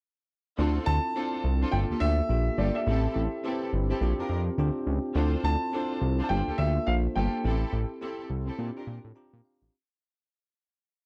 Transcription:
0.58 0.79 D2 loud
0.58 1.07 C4 medium
0.58 0.85 C4 medium
0.58 0.86 D4 medium
0.58 1.07 E4 medium
0.58 0.85 F4 medium
0.58 1.07 F4 medium
0.58 0.86 A4 loud
0.58 1.07 A4 loud
0.86 0.99 D2 medium
0.86 1.68 A5 loud
1.16 1.36 C4 medium
1.16 1.64 C4 medium
1.16 1.36 D4 medium
1.16 1.64 E4 medium
1.16 1.37 F4 medium
1.16 1.64 F4 medium
1.16 1.37 A4 medium
1.16 1.65 C5 medium
1.44 1.64 C2 medium
1.61 1.78 C4 medium
1.61 1.78 D4 medium
1.61 1.78 F4 medium
1.61 1.78 A4 medium
1.72 1.85 G1 loud
1.72 2.21 A#3 medium
1.72 2.21 D4 medium
1.72 2.21 F4 medium
1.72 2.21 A4 medium
1.72 1.78 G5 medium
1.90 1.95 D2 soft
1.90 2.07 A#3 medium
1.90 2.07 F4 medium
1.90 2.07 G4 medium
1.90 2.07 A4 medium
2.00 2.21 D2 medium
2.00 2.60 E5 loud
2.29 2.50 A#1 medium
2.29 2.78 A#3 medium
2.29 2.78 D4 medium
2.29 2.78 F4 medium
2.29 2.78 G4 medium
2.58 2.71 G1 loud
2.58 2.79 A#3 medium
2.58 2.79 F4 medium
2.58 2.80 G4 medium
2.58 2.80 A4 medium
2.58 2.76 D5 medium
2.75 3.57 E5 medium
2.87 3.07 A1 loud
2.87 3.35 C4 medium
2.87 3.14 C4 medium
2.87 3.35 E4 medium
2.87 3.14 E4 medium
2.87 3.35 G4 medium
2.87 3.14 G4 medium
2.87 3.14 A4 loud
2.87 3.36 A4 medium
3.15 3.28 A1 medium
3.44 3.92 C4 medium
3.44 3.65 C4 medium
3.44 3.65 E4 medium
3.44 3.93 E4 medium
3.44 3.65 G4 medium
3.44 3.93 G4 medium
3.44 3.65 A4 medium
3.44 3.53 B4 medium
3.52 3.96 C5 loud
3.73 3.93 G1 medium
3.90 4.06 C4 medium
3.90 4.06 E4 medium
3.90 4.07 G4 medium
3.90 4.07 A4 medium
4.01 4.13 A#1 loud
4.01 4.50 C4 loud
4.01 4.50 D4 medium
4.01 4.50 F4 medium
4.01 4.50 G4 loud
4.18 4.23 F2 soft
4.18 4.35 D4 medium
4.18 4.35 F4 medium
4.18 4.35 G4 medium
4.18 4.35 A#4 medium
4.29 4.50 F2 medium
4.58 4.71 D2 medium
4.58 5.07 C4 loud
4.58 5.07 D4 medium
4.58 5.07 F4 medium
4.58 5.07 G4 loud
4.87 4.99 C#2 medium
5.15 5.36 D2 loud
5.15 5.64 C4 medium
5.15 5.42 D4 medium
5.15 5.64 E4 medium
5.15 5.42 F4 medium
5.15 5.64 F4 medium
5.15 5.43 A4 medium
5.15 5.64 A4 medium
5.15 5.43 C5 medium
5.44 5.56 D2 loud
5.44 6.22 A5 loud
5.73 6.21 C4 medium
5.73 5.94 D4 medium
5.73 6.21 E4 medium
5.73 5.94 F4 medium
5.73 6.21 F4 medium
5.73 5.94 A4 medium
5.73 6.22 A4 medium
5.73 5.94 C5 medium
6.01 6.22 C2 medium
6.19 6.35 D4 medium
6.19 6.35 F4 medium
6.19 6.35 A4 medium
6.19 6.35 C5 medium
6.23 6.30 A5 medium
6.29 6.42 G1 loud
6.29 6.78 A#3 medium
6.29 6.78 D4 medium
6.29 6.78 F4 medium
6.29 6.38 G4 medium
6.29 6.59 G5 medium
6.37 6.82 A4 medium
6.47 6.52 D2 soft
6.47 6.64 A#3 medium
6.47 6.64 F4 medium
6.47 6.64 G4 medium
6.47 6.64 A4 medium
6.58 6.79 D2 medium
6.58 6.88 E5 medium
6.87 7.08 A#1 loud
6.87 7.35 A#3 medium
6.87 7.35 D4 medium
6.87 7.36 F4 medium
6.87 7.36 C5 medium
6.87 6.93 F5 medium
7.16 7.28 G1 loud
7.16 7.36 A#3 medium
7.16 7.37 F4 medium
7.16 7.37 G4 medium
7.16 7.37 A4 medium
7.16 7.97 G5 medium
7.44 7.65 A1 loud
7.44 7.71 C4 medium
7.44 7.93 C4 medium
7.44 7.71 E4 medium
7.44 7.93 E4 medium
7.44 7.71 G4 medium
7.44 7.93 G4 medium
7.44 7.71 A4 loud
7.44 7.93 A4 medium
7.73 7.85 A1 loud
8.01 8.49 C4 medium
8.01 8.22 C4 medium
8.01 8.50 E4 medium
8.01 8.22 E4 medium
8.01 8.50 G4 medium
8.01 8.23 G4 medium
8.01 8.23 A4 medium
8.01 8.50 A4 loud
8.30 8.50 C2 medium
8.47 8.64 C4 medium
8.47 8.64 E4 medium
8.47 8.64 G4 medium
8.47 8.64 A4 medium
8.58 8.71 A#2 loud
8.58 9.07 C4 medium
8.58 9.07 D4 medium
8.58 9.07 F4 medium
8.58 9.07 G4 loud
8.76 8.92 D4 medium
8.76 8.93 F4 medium
8.76 8.93 G4 medium
8.76 8.93 A#4 medium
8.87 8.99 A#2 loud
9.05 9.13 A2 medium
9.15 9.64 C4 loud
9.15 9.64 D4 medium
9.15 9.64 F4 medium
9.15 9.64 G4 loud
9.15 9.42 A#5 medium
9.33 9.41 A#2 medium
9.45 9.71 F5 medium
9.62 9.70 A1 medium

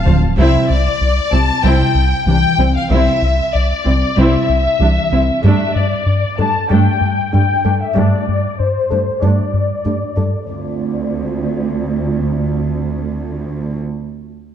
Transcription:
0.00 0.38 D1 medium
0.00 0.14 F5 medium
0.00 0.14 A5 medium
0.06 0.14 D2 soft
0.06 0.25 D2 medium
0.06 0.15 D2 soft
0.06 0.26 F3 medium
0.06 0.14 A3 soft
0.06 0.14 C5 soft
0.06 taiko low medium
0.37 0.57 C2 medium
0.37 0.46 C2 medium
0.37 0.57 C3 medium
0.37 0.67 C4 medium
0.37 0.68 E4 medium
0.37 0.67 E5 medium
0.68 0.89 C2 medium
0.68 1.31 D5 medium
1.01 1.20 C2 medium
1.32 1.51 C2 medium
1.32 1.41 C2 soft
1.32 1.40 C4 soft
1.32 1.52 C4 medium
1.32 1.40 E4 soft
1.32 1.64 A5 medium
1.64 1.83 C2 medium
1.64 1.72 C2 medium
1.64 1.83 C3 medium
1.64 1.94 C4 medium
1.64 1.93 E4 medium
1.64 2.26 G5 medium
1.95 2.14 C2 medium
2.26 2.46 C2 medium
2.26 2.35 C2 soft
2.26 2.46 E3 medium
2.26 2.36 G3 soft
2.26 2.36 D4 soft
2.26 2.74 G5 medium
2.58 2.78 C2 medium
2.58 2.67 C2 soft
2.58 2.78 C4 soft
2.58 2.67 C4 soft
2.58 2.67 E4 soft
2.75 2.91 F5 medium
2.90 3.09 C2 medium
2.90 2.99 C2 medium
2.90 3.10 C3 medium
2.90 3.20 C4 medium
2.90 3.20 E4 medium
2.90 3.52 E5 medium
3.22 3.41 C2 soft
3.53 3.73 C2 medium
3.53 4.16 D5 medium
3.85 4.05 C2 medium
3.85 3.94 C2 soft
3.85 3.93 C4 soft
3.85 4.05 C4 medium
3.85 3.93 E4 soft
4.17 4.36 C2 medium
4.17 4.26 C2 medium
4.17 4.36 C3 medium
4.17 4.47 C4 medium
4.17 4.47 E4 medium
4.17 5.42 E5 medium
4.49 4.68 C2 medium
4.80 4.99 C2 medium
4.80 4.89 C2 soft
4.80 4.99 E3 medium
4.80 4.89 G3 soft
4.80 4.89 D4 soft
5.12 5.31 C2 soft
5.12 5.21 C2 soft
5.12 5.20 C4 soft
5.12 5.31 C4 soft
5.12 5.21 E4 soft
5.43 5.63 G2 medium
5.43 5.52 G2 medium
5.43 5.63 G3 medium
5.43 5.74 A3 medium
5.43 5.74 D4 medium
5.43 5.74 E5 medium
5.75 5.94 G2 medium
5.75 6.38 D5 medium
6.06 6.25 G2 medium
6.38 6.57 G2 medium
6.38 6.47 G2 soft
6.38 6.46 A3 soft
6.38 6.47 D4 soft
6.38 6.57 A4 medium
6.38 6.69 A5 medium
6.69 6.89 G2 medium
6.69 6.78 G2 medium
6.69 6.89 G3 medium
6.69 6.99 A3 medium
6.69 6.99 D4 medium
6.69 7.31 G5 medium
7.01 7.20 G2 medium
7.32 7.41 G2 soft
7.32 7.53 G2 medium
7.32 7.42 G3 soft
7.32 7.41 A3 soft
7.32 7.52 D4 soft
7.32 7.79 G5 medium
7.65 7.84 G2 medium
7.65 7.73 G2 soft
7.65 7.73 A3 soft
7.65 7.73 D4 soft
7.65 7.84 A4 medium
7.80 7.96 E5 medium
7.95 8.04 G2 medium
7.95 8.15 G2 medium
7.95 8.15 G3 medium
7.95 8.25 A3 medium
7.95 8.25 D4 medium
7.95 8.58 D5 medium
8.28 8.47 G2 soft
8.59 8.78 G2 soft
8.59 9.22 C5 medium
8.90 8.99 G2 soft
8.90 9.10 G2 medium
8.90 8.99 A3 soft
8.90 8.98 D4 soft
8.90 9.09 A4 medium
9.21 9.41 G2 medium
9.21 9.31 G2 soft
9.21 9.41 G3 medium
9.21 9.51 A3 soft
9.21 9.51 D4 soft
9.21 10.46 D5 medium
9.53 9.72 G2 soft
9.85 10.04 G2 soft
9.85 9.94 G2 soft
9.85 9.93 G3 soft
9.85 9.93 A3 soft
9.85 10.04 D4 soft
10.16 10.36 G2 soft
10.16 10.25 G2 soft
10.16 10.24 A3 soft
10.16 10.24 D4 soft
10.16 10.36 A4 soft
10.48 13.77 D2 soft
10.48 13.77 C4 soft
10.48 13.77 F4 soft
10.48 13.77 D5 soft

